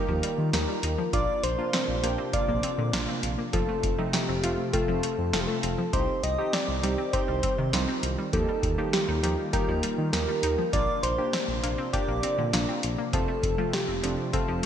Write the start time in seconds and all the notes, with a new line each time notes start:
Already playing: D#3 G3 A#3 D#4 F4 G4 A#4
0.08 D#2 F3
0.23 G3, closed hi-hat
0.38 D#3
0.53 D#2 A#3 D#4 G4 A#4, snare, closed hi-hat
0.68 G3
0.83 D#2 D#4, closed hi-hat
0.98 F3
1.13 A#1 C3 F3 A#3 D4 F4 D5, kick, closed hi-hat
1.43 A#1 C5, closed hi-hat
1.58 A#3 D4 F4
1.73 C4 C5, snare, closed hi-hat
1.88 A#1
2.03 A#1 A#3 D4 G4, closed hi-hat
2.18 C4
2.33 A#3 D4 F4 D5, kick, closed hi-hat
2.48 A#1 A#3
2.63 C4, closed hi-hat
2.78 A#2 D3
2.93 A#1 A#3 D4 F4, snare, closed hi-hat
3.09 C4
3.23 A#1, closed hi-hat
3.38 A#3
3.53 F1 C3 F3 A3 C4 F4 A4, kick, closed hi-hat
3.69 A3
3.83 F1, kick, closed hi-hat
3.98 F3 A3 C4 D#4
4.13 A3 G4, snare, closed hi-hat
4.28 F1 C4
4.43 F1 F3 A3 C4 F4, closed hi-hat
4.73 A3 C4 F4 A4, kick, closed hi-hat
4.88 F1 F3
5.03 A3, closed hi-hat
5.18 F2
5.33 F1 A3 C4 F4 A4, snare, closed hi-hat
5.41 G4
5.47 A3 A4
5.63 F1 C4, closed hi-hat
5.78 F3
5.93 C2 D#3 G3 C4 D#4 G4 C5, kick, closed hi-hat
6.23 C2 D#5, closed hi-hat
6.38 C4 D#4 G4
6.53 C4 D5, snare, closed hi-hat
6.68 C2
6.83 C2 G3 C4 D#4 G4, closed hi-hat
6.98 C4
7.13 C4 D#4 G4 C5, kick, closed hi-hat
7.28 C2 G3
7.43 C4, kick, closed hi-hat
7.58 C3 D#3
7.73 C2 G3 C4 D#4 F4, snare, closed hi-hat
7.88 C4
8.03 C2, closed hi-hat
8.18 G3
8.33 D#2 F3 G3 A#3 D#4 F4 G4 A4, kick, closed hi-hat
8.48 G3
8.63 D#2, kick, closed hi-hat
8.78 F3 A#3 D#4 G4
8.93 G3 G4, snare, closed hi-hat
9.08 D#2 D#4
9.23 D#2 F3 A#3 D#4 G4, closed hi-hat
9.53 A#3 D#4 G4 A#4, kick, closed hi-hat
9.68 D#2 F3
9.83 G3, closed hi-hat
9.98 D#3
10.13 D#2 A#3 D#4 G4 A#4, snare, closed hi-hat
10.28 G3
10.43 D#2 D#4, closed hi-hat
10.58 F3
10.73 A#1 C3 F3 A#3 D4 F4 D5, kick, closed hi-hat
11.03 A#1 C5, closed hi-hat
11.18 A#3 D4 G4
11.33 C4 C5, snare, closed hi-hat
11.48 A#1
11.63 A#1 A#3 D4 F4, closed hi-hat
11.78 C4
11.93 A#3 D4 G4 D5, kick, closed hi-hat
12.08 A#1 A#3
12.23 C4, closed hi-hat
12.38 A#2 D3
12.53 A#1 A#3 D4 F4, snare, closed hi-hat
12.68 C4
12.83 A#1, closed hi-hat
12.98 A#3
13.13 F1 F3 A3 C4 F4 A4, kick, closed hi-hat
13.28 A3
13.43 F1, kick, closed hi-hat
13.58 F3 A3 C4 F4
13.73 A3 G4, snare, closed hi-hat
13.88 F1 C4
14.03 F1 F3 A3 C4 D4, closed hi-hat
14.33 A3 C4 F4 A4, kick, closed hi-hat
14.48 F1 F3